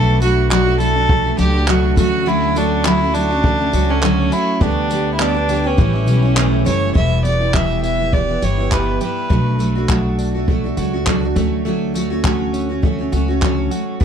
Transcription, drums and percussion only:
0.22 tambourine medium
0.51 clap loud
0.80 tambourine medium
1.09 kick loud
1.39 tambourine medium
1.68 clap loud
1.97 kick loud
1.97 tambourine medium
2.56 tambourine medium
2.85 clap loud
3.15 tambourine medium
3.44 kick loud
3.73 tambourine medium
4.03 clap loud
4.32 tambourine medium
4.61 kick loud
4.91 tambourine medium
5.20 clap loud
5.49 tambourine medium
5.78 kick loud
6.08 tambourine medium
6.37 clap loud
6.66 tambourine medium
6.95 kick loud
7.25 tambourine medium
7.54 kick loud
7.54 clap loud
7.84 tambourine medium
8.13 kick loud
8.42 tambourine medium
8.72 kick loud
8.72 clap loud
9.01 tambourine medium
9.30 kick loud
9.60 tambourine medium
9.89 kick loud
9.89 clap loud
10.19 tambourine medium
10.48 kick loud
10.77 tambourine medium
11.07 kick loud
11.07 clap loud
11.36 kick loud
11.36 tambourine medium
11.95 tambourine medium
12.24 kick loud
12.24 clap loud
12.54 tambourine medium
12.83 kick loud
13.13 tambourine medium
13.42 kick loud
13.42 clap loud
13.71 tambourine medium
14.01 kick loud

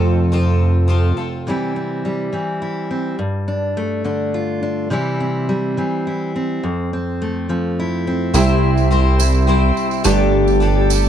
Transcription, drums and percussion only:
8.34 tambourine medium
8.77 tambourine soft
9.20 tambourine medium
9.34 tambourine soft
9.77 tambourine soft
9.91 tambourine soft
10.04 tambourine loud
10.48 tambourine soft
10.90 tambourine loud
11.04 tambourine soft

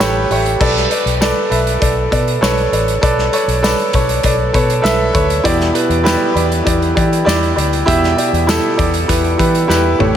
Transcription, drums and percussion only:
0.00 snare loud
0.00 tambourine medium
0.31 open hi-hat medium
0.46 closed hi-hat medium
0.61 kick loud
0.61 crash loud
0.77 snare soft
0.91 closed hi-hat medium
1.07 closed hi-hat soft
1.22 snare loud
1.22 tambourine medium
1.52 closed hi-hat medium
1.67 closed hi-hat soft
1.82 kick medium
1.82 closed hi-hat medium
2.12 kick medium
2.12 closed hi-hat medium
2.28 closed hi-hat soft
2.43 snare loud
2.43 tambourine loud
2.58 closed hi-hat soft
2.73 closed hi-hat medium
2.88 closed hi-hat soft
3.03 kick loud
3.03 closed hi-hat loud
3.19 snare soft
3.33 closed hi-hat medium
3.49 closed hi-hat medium
3.64 snare loud
3.64 tambourine medium
3.79 closed hi-hat soft
3.93 kick medium
3.93 closed hi-hat medium
4.09 closed hi-hat medium
4.23 kick medium
4.23 closed hi-hat medium
4.54 kick medium
4.54 closed hi-hat medium
4.70 closed hi-hat soft
4.85 snare loud
4.85 tambourine loud
5.15 kick loud
5.15 closed hi-hat medium
5.30 closed hi-hat medium
5.45 kick loud
5.45 closed hi-hat loud
5.61 snare soft
5.61 closed hi-hat soft
5.75 closed hi-hat medium
5.91 closed hi-hat soft
6.06 snare loud
6.06 tambourine medium
6.37 closed hi-hat medium
6.52 closed hi-hat soft
6.67 kick medium
6.67 closed hi-hat loud
6.82 closed hi-hat soft
6.97 kick medium
6.97 closed hi-hat medium
7.13 closed hi-hat soft
7.27 snare loud
7.27 tambourine medium
7.43 closed hi-hat soft
7.58 closed hi-hat medium
7.73 closed hi-hat soft
7.88 kick loud
7.88 closed hi-hat medium
8.04 snare soft
8.04 closed hi-hat soft
8.18 closed hi-hat medium
8.34 closed hi-hat soft
8.49 snare loud
8.49 tambourine medium
8.79 kick medium
8.79 closed hi-hat medium
8.94 closed hi-hat medium
9.09 kick medium
9.09 closed hi-hat medium
9.24 closed hi-hat soft
9.39 kick medium
9.39 closed hi-hat medium
9.55 closed hi-hat soft
9.70 snare medium
9.70 tambourine medium
10.00 mid tom medium

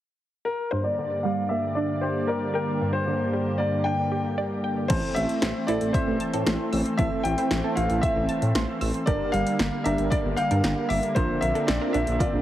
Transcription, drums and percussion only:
4.90 kick loud
4.90 closed hi-hat medium
4.90 crash medium
5.16 closed hi-hat medium
5.29 closed hi-hat medium
5.42 snare loud
5.42 closed hi-hat medium
5.68 closed hi-hat medium
5.81 closed hi-hat medium
5.94 kick medium
5.94 closed hi-hat medium
6.20 closed hi-hat medium
6.34 closed hi-hat medium
6.46 snare loud
6.46 closed hi-hat medium
6.73 open hi-hat medium
6.86 closed hi-hat medium
6.99 kick loud
6.99 closed hi-hat medium
7.25 closed hi-hat medium
7.38 closed hi-hat medium
7.51 snare loud
7.51 closed hi-hat medium
7.77 closed hi-hat medium
7.90 closed hi-hat medium
8.03 kick medium
8.03 closed hi-hat medium
8.29 closed hi-hat medium
8.42 closed hi-hat medium
8.55 snare loud
8.55 closed hi-hat medium
8.81 open hi-hat medium
8.94 closed hi-hat medium
9.07 kick loud
9.07 closed hi-hat medium
9.34 closed hi-hat medium
9.47 closed hi-hat medium
9.59 snare loud
9.59 closed hi-hat medium
9.86 closed hi-hat medium
9.98 closed hi-hat medium
10.12 kick medium
10.12 closed hi-hat medium
10.37 closed hi-hat medium
10.51 closed hi-hat medium
10.64 snare loud
10.64 closed hi-hat medium
10.90 open hi-hat medium
11.03 closed hi-hat medium
11.16 kick loud
11.16 closed hi-hat medium
11.42 closed hi-hat medium
11.55 closed hi-hat medium
11.68 snare loud
11.68 closed hi-hat medium
11.94 closed hi-hat medium
12.07 closed hi-hat medium
12.20 kick medium
12.20 closed hi-hat medium

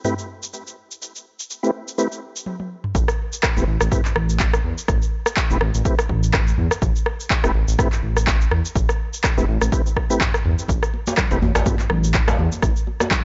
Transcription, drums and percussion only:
0.04 mid tom medium
0.04 cabasa medium
0.19 cabasa soft
0.43 cabasa medium
0.54 cabasa medium
0.67 cabasa soft
0.91 cabasa medium
1.02 cabasa medium
1.16 cabasa soft
1.40 cabasa medium
1.50 cabasa medium
1.64 cabasa soft
1.88 cabasa medium
1.99 cabasa medium
2.12 cabasa soft
2.36 cabasa medium
2.46 high tom medium
2.60 high tom medium
2.84 mid tom medium
2.95 kick loud
2.95 cabasa medium
3.08 cross-stick medium
3.08 cabasa soft
3.33 cabasa medium
3.43 kick loud
3.43 cross-stick medium
3.43 clap loud
3.43 cabasa medium
3.57 cabasa soft
3.81 cross-stick loud
3.81 cabasa medium
3.92 kick loud
3.92 mid tom loud
3.92 cabasa medium
4.05 clap soft
4.05 cabasa soft
4.16 cross-stick medium
4.30 cabasa medium
4.40 kick loud
4.40 clap loud
4.40 cabasa medium
4.54 cross-stick loud
4.54 cabasa soft
4.78 cabasa medium
4.88 kick loud
4.88 cross-stick medium
4.88 cabasa medium
5.02 cabasa soft
5.26 cross-stick loud
5.26 cabasa medium
5.37 kick loud
5.37 clap loud
5.37 cabasa medium
5.51 cabasa soft
5.61 cross-stick medium
5.75 cabasa medium
5.85 kick loud
5.85 cabasa medium
5.99 cross-stick loud
5.99 cabasa soft
6.09 kick medium
6.23 cabasa medium
6.34 kick loud
6.34 cross-stick medium
6.34 clap loud
6.34 mid tom medium
6.34 cabasa medium
6.47 cabasa soft
6.58 mid tom medium
6.71 cross-stick loud
6.71 cabasa medium
6.82 kick loud
6.82 cabasa medium
6.96 cabasa soft
7.06 cross-stick medium
7.20 cabasa medium
7.30 kick loud
7.30 clap loud
7.30 cabasa medium
7.44 cross-stick loud
7.44 cabasa soft
7.68 cabasa medium
7.79 kick loud
7.79 cross-stick medium
7.79 mid tom medium
7.79 cabasa medium
7.92 clap soft
7.92 cabasa soft
8.17 cross-stick medium
8.17 cabasa medium
8.27 kick loud
8.27 clap loud
8.27 cabasa medium
8.41 cabasa soft
8.51 cross-stick medium
8.65 cabasa medium
8.76 kick loud
8.76 cabasa medium
8.89 cross-stick medium
8.89 cabasa soft
9.14 cabasa medium
9.24 kick loud
9.24 cross-stick medium
9.24 clap loud
9.24 cabasa medium
9.38 cabasa soft
9.61 cross-stick medium
9.61 cabasa medium
9.72 kick loud
9.72 cabasa medium
9.86 cabasa soft
9.96 kick medium
9.96 cross-stick medium
10.11 cabasa medium
10.21 kick loud
10.21 clap loud
10.21 mid tom medium
10.21 cabasa medium
10.34 cross-stick medium
10.34 cabasa soft
10.45 mid tom medium
10.59 cabasa medium
10.68 kick loud
10.68 muted conga medium
10.68 cabasa medium
10.83 cross-stick medium
10.83 cabasa soft
10.94 muted conga soft
11.07 djembe slap medium
11.07 high conga medium
11.07 cabasa medium
11.17 kick loud
11.17 cross-stick medium
11.17 clap loud
11.17 muted conga medium
11.17 low conga medium
11.17 cabasa medium
11.31 djembe slap medium
11.31 djembe tone medium
11.31 cabasa soft
11.42 high conga loud
11.42 djembe bass medium
11.55 cross-stick medium
11.55 djembe slap loud
11.55 muted conga soft
11.55 cabasa medium
11.66 kick loud
11.66 mid tom loud
11.66 high conga loud
11.66 djembe tone medium
11.66 cabasa medium
11.79 clap soft
11.79 muted conga soft
11.79 cabasa soft
11.90 cross-stick medium
11.90 low conga medium
12.04 muted conga soft
12.04 cabasa medium
12.14 kick loud
12.14 clap loud
12.14 cabasa medium
12.28 cross-stick medium
12.28 djembe slap loud
12.28 low conga medium
12.28 cabasa soft
12.39 muted conga medium
12.39 high conga medium
12.52 djembe tone medium
12.52 cabasa medium
12.62 kick loud
12.62 cross-stick medium
12.62 muted conga soft
12.62 cabasa medium
12.76 cabasa soft
12.87 muted conga soft
13.00 cross-stick medium
13.00 djembe slap medium
13.00 high conga medium
13.00 cabasa medium
13.11 kick loud
13.11 clap loud
13.11 muted conga medium
13.11 low conga loud
13.11 cabasa medium

